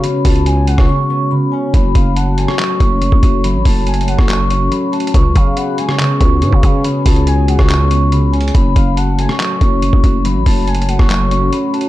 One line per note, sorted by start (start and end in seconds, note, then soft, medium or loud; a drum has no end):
0.00 0.66 G#3 medium
0.00 1.09 B3 medium
0.00 1.70 B3 medium
0.00 1.53 C#4 medium
0.00 0.56 F#4 medium
0.00 5.10 F#4 medium
0.00 5.10 C#5 medium
0.00 0.43 B5 medium
0.00 closed hi-hat loud
0.04 0.87 C#3 loud
0.25 0.76 C#2 loud
0.25 0.45 A5 medium
0.25 kick medium
0.25 closed hi-hat medium
0.25 open hi-hat medium
0.36 closed hi-hat soft
0.46 0.76 G#5 medium
0.46 0.66 G#5 medium
0.46 closed hi-hat medium
0.67 1.79 G#3 medium
0.67 0.88 F#5 medium
0.67 closed hi-hat medium
0.78 0.88 C#2 loud
0.78 0.88 C#6 medium
0.78 kick loud
0.78 cross-stick medium
0.89 1.30 C#3 medium
0.89 1.08 C#6 loud
1.10 4.20 B3 medium
1.10 1.29 C#6 medium
1.31 1.79 C#3 medium
1.31 1.50 B5 medium
1.52 2.79 C#4 medium
1.52 1.71 G#5 medium
1.74 1.94 F#1 loud
1.74 2.57 F#3 medium
1.74 5.11 A3 medium
1.74 2.14 B5 loud
1.74 kick loud
1.74 closed hi-hat loud
1.95 2.46 F#1 loud
1.95 2.15 F5 medium
1.95 kick loud
1.95 closed hi-hat medium
2.16 2.37 F#5 medium
2.16 2.46 A5 medium
2.16 closed hi-hat medium
2.38 4.07 A3 medium
2.38 2.58 G#5 medium
2.38 closed hi-hat medium
2.48 2.57 C#6 medium
2.48 cross-stick medium
2.59 3.00 F#3 medium
2.59 2.78 C#6 medium
2.59 clap loud
2.59 closed hi-hat medium
2.80 3.11 F#1 loud
2.80 4.50 C#4 medium
2.80 2.99 C#6 loud
2.80 kick loud
2.80 closed hi-hat medium
3.01 3.43 F#3 medium
3.01 3.41 C#6 medium
3.01 closed hi-hat medium
3.12 3.22 F#1 loud
3.12 kick loud
3.23 3.56 F#1 loud
3.23 4.93 F#4 medium
3.23 kick loud
3.23 closed hi-hat medium
3.44 4.27 F#3 loud
3.44 3.84 B5 medium
3.44 closed hi-hat loud
3.55 3.65 A1 loud
3.65 4.16 F#1 loud
3.65 3.86 A5 medium
3.65 kick loud
3.65 open hi-hat medium
3.87 4.07 G#5 medium
3.87 4.17 A5 medium
3.87 closed hi-hat medium
3.94 closed hi-hat medium
4.01 closed hi-hat medium
4.07 5.84 A3 medium
4.07 4.28 F#5 medium
4.07 closed hi-hat medium
4.18 4.70 F#1 loud
4.18 4.28 C#6 medium
4.18 kick loud
4.18 cross-stick medium
4.29 4.71 F#3 medium
4.29 4.49 C#6 loud
4.29 clap loud
4.29 closed hi-hat medium
4.50 6.63 C#4 medium
4.50 4.70 C#6 loud
4.50 closed hi-hat medium
4.72 5.19 F#3 medium
4.72 4.91 B5 medium
4.72 closed hi-hat medium
4.92 7.37 F#4 medium
4.92 5.12 A5 medium
4.92 closed hi-hat soft
5.00 closed hi-hat medium
5.07 closed hi-hat medium
5.14 5.35 C#2 loud
5.14 5.98 C#3 medium
5.14 8.51 B3 medium
5.14 8.51 F#4 medium
5.14 8.51 G#4 medium
5.14 8.51 C#5 medium
5.14 5.55 C#6 loud
5.14 kick loud
5.14 closed hi-hat loud
5.35 5.87 C#3 loud
5.35 5.56 F5 medium
5.35 kick loud
5.35 closed hi-hat medium
5.57 5.77 F#5 medium
5.57 5.87 B5 medium
5.57 closed hi-hat medium
5.78 7.47 G#3 medium
5.78 5.98 G#5 medium
5.78 closed hi-hat medium
5.89 5.98 C#6 medium
5.89 cross-stick loud
5.99 6.41 C#3 medium
5.99 6.18 C#6 medium
5.99 clap loud
5.99 closed hi-hat medium
6.21 6.43 C#2 loud
6.21 7.90 B3 medium
6.21 6.40 C#6 medium
6.21 kick loud
6.21 closed hi-hat medium
6.42 6.52 G#2 loud
6.42 6.84 C#3 medium
6.42 6.82 C#6 medium
6.42 closed hi-hat medium
6.53 6.63 C#3 loud
6.53 kick loud
6.63 6.84 C#3 loud
6.63 8.33 C#4 medium
6.63 kick loud
6.63 closed hi-hat medium
6.84 7.68 C#3 loud
6.84 7.24 B5 medium
6.84 closed hi-hat medium
7.06 7.57 C#2 loud
7.06 7.26 A5 medium
7.06 kick loud
7.06 closed hi-hat medium
7.06 open hi-hat medium
7.16 closed hi-hat soft
7.27 7.57 G#5 medium
7.27 7.47 G#5 medium
7.27 closed hi-hat medium
7.48 8.60 G#3 medium
7.48 7.69 F#5 medium
7.48 closed hi-hat medium
7.59 8.51 C#2 loud
7.59 7.69 C#6 medium
7.59 kick loud
7.59 cross-stick medium
7.70 8.11 C#3 medium
7.70 7.89 C#6 loud
7.70 clap loud
7.70 closed hi-hat medium
7.91 11.01 B3 medium
7.91 8.10 C#6 medium
7.91 closed hi-hat medium
8.12 8.60 C#3 medium
8.12 8.31 B5 medium
8.12 closed hi-hat medium
8.32 9.60 C#4 medium
8.32 8.52 G#5 medium
8.32 closed hi-hat soft
8.41 closed hi-hat medium
8.48 closed hi-hat medium
8.54 8.75 F#1 loud
8.54 9.38 F#3 medium
8.54 11.89 A3 medium
8.54 11.89 F#4 medium
8.54 11.89 C#5 medium
8.54 8.94 B5 loud
8.54 kick loud
8.54 closed hi-hat loud
8.76 9.27 F#1 loud
8.76 8.96 F5 medium
8.76 kick medium
8.76 closed hi-hat medium
8.97 9.18 F#5 medium
8.97 9.27 A5 medium
8.97 closed hi-hat medium
9.18 10.88 A3 medium
9.18 9.39 G#5 medium
9.18 closed hi-hat medium
9.29 9.38 C#6 medium
9.29 cross-stick medium
9.39 9.81 F#3 medium
9.39 9.59 C#6 medium
9.39 clap loud
9.39 closed hi-hat medium
9.61 9.92 F#1 loud
9.61 11.31 C#4 medium
9.61 9.80 C#6 medium
9.61 kick loud
9.61 closed hi-hat medium
9.82 10.24 F#3 medium
9.82 10.22 C#6 medium
9.82 closed hi-hat medium
9.93 10.03 F#1 loud
9.93 kick loud
10.04 10.37 F#1 loud
10.04 11.74 F#4 medium
10.04 kick loud
10.04 closed hi-hat medium
10.25 11.08 F#3 loud
10.25 10.65 B5 medium
10.25 closed hi-hat medium
10.35 10.46 A1 loud
10.46 10.97 F#1 loud
10.46 10.66 A5 medium
10.46 kick loud
10.46 open hi-hat medium
10.67 10.88 G#5 medium
10.67 10.98 A5 medium
10.67 closed hi-hat medium
10.75 closed hi-hat medium
10.82 closed hi-hat medium
10.88 11.89 A3 medium
10.88 11.09 F#5 medium
10.88 closed hi-hat medium
10.99 11.50 F#1 loud
10.99 11.09 C#6 medium
10.99 kick loud
10.99 cross-stick medium
11.09 11.51 F#3 medium
11.09 11.29 C#6 loud
11.09 clap loud
11.09 closed hi-hat medium
11.31 11.89 C#4 medium
11.31 11.51 C#6 loud
11.31 closed hi-hat medium
11.53 11.89 F#3 medium
11.53 11.72 B5 medium
11.53 closed hi-hat medium
11.74 11.89 F#4 medium
11.74 11.89 A5 medium
11.74 closed hi-hat soft
11.81 closed hi-hat medium